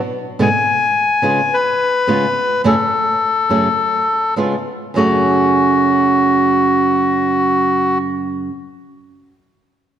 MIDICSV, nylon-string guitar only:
0, 0, Header, 1, 2, 480
1, 0, Start_track
1, 0, Key_signature, 3, "minor"
1, 0, Tempo, 568182
1, 325, Time_signature, 4, 2, 24, 8
1, 8442, End_track
2, 0, Start_track
2, 0, Title_t, "Nylon-string guitar"
2, 0, Program_c, 0, 24
2, 330, Note_on_c, 0, 44, 84
2, 331, Note_on_c, 0, 47, 94
2, 335, Note_on_c, 0, 50, 92
2, 341, Note_on_c, 0, 59, 92
2, 343, Note_on_c, 0, 56, 99
2, 344, Note_on_c, 0, 68, 90
2, 402, Note_off_c, 0, 44, 0
2, 403, Note_off_c, 0, 47, 0
2, 404, Note_off_c, 0, 50, 0
2, 407, Note_off_c, 0, 59, 0
2, 408, Note_off_c, 0, 56, 0
2, 409, Note_off_c, 0, 68, 0
2, 1032, Note_on_c, 0, 49, 76
2, 1037, Note_on_c, 0, 59, 66
2, 1039, Note_on_c, 0, 56, 69
2, 1043, Note_on_c, 0, 65, 79
2, 1048, Note_on_c, 0, 68, 80
2, 1176, Note_off_c, 0, 49, 0
2, 1179, Note_off_c, 0, 59, 0
2, 1180, Note_off_c, 0, 56, 0
2, 1182, Note_off_c, 0, 65, 0
2, 1184, Note_off_c, 0, 68, 0
2, 1752, Note_on_c, 0, 49, 71
2, 1756, Note_on_c, 0, 56, 77
2, 1762, Note_on_c, 0, 59, 78
2, 1762, Note_on_c, 0, 65, 90
2, 1763, Note_on_c, 0, 68, 80
2, 1896, Note_off_c, 0, 49, 0
2, 1898, Note_off_c, 0, 56, 0
2, 1901, Note_off_c, 0, 59, 0
2, 1901, Note_off_c, 0, 65, 0
2, 1902, Note_off_c, 0, 68, 0
2, 2232, Note_on_c, 0, 42, 95
2, 2235, Note_on_c, 0, 49, 93
2, 2242, Note_on_c, 0, 57, 83
2, 2243, Note_on_c, 0, 54, 91
2, 2243, Note_on_c, 0, 61, 107
2, 2246, Note_on_c, 0, 68, 105
2, 2309, Note_off_c, 0, 42, 0
2, 2311, Note_off_c, 0, 49, 0
2, 2314, Note_off_c, 0, 54, 0
2, 2314, Note_off_c, 0, 57, 0
2, 2314, Note_off_c, 0, 61, 0
2, 2316, Note_off_c, 0, 68, 0
2, 2952, Note_on_c, 0, 42, 68
2, 2958, Note_on_c, 0, 49, 67
2, 2961, Note_on_c, 0, 54, 71
2, 2962, Note_on_c, 0, 57, 62
2, 2963, Note_on_c, 0, 61, 74
2, 2964, Note_on_c, 0, 68, 79
2, 3100, Note_off_c, 0, 42, 0
2, 3103, Note_off_c, 0, 49, 0
2, 3105, Note_off_c, 0, 54, 0
2, 3105, Note_off_c, 0, 57, 0
2, 3106, Note_off_c, 0, 61, 0
2, 3106, Note_off_c, 0, 68, 0
2, 3686, Note_on_c, 0, 49, 64
2, 3690, Note_on_c, 0, 56, 84
2, 3696, Note_on_c, 0, 59, 77
2, 3701, Note_on_c, 0, 65, 74
2, 3702, Note_on_c, 0, 68, 83
2, 3835, Note_off_c, 0, 49, 0
2, 3837, Note_off_c, 0, 56, 0
2, 3840, Note_off_c, 0, 59, 0
2, 3842, Note_off_c, 0, 65, 0
2, 3843, Note_off_c, 0, 68, 0
2, 4173, Note_on_c, 0, 42, 81
2, 4185, Note_on_c, 0, 49, 74
2, 4190, Note_on_c, 0, 54, 91
2, 4196, Note_on_c, 0, 57, 76
2, 4204, Note_on_c, 0, 61, 94
2, 4207, Note_on_c, 0, 68, 87
2, 7169, Note_off_c, 0, 42, 0
2, 7180, Note_off_c, 0, 49, 0
2, 7185, Note_off_c, 0, 54, 0
2, 7191, Note_off_c, 0, 57, 0
2, 7200, Note_off_c, 0, 61, 0
2, 7203, Note_off_c, 0, 68, 0
2, 8442, End_track
0, 0, End_of_file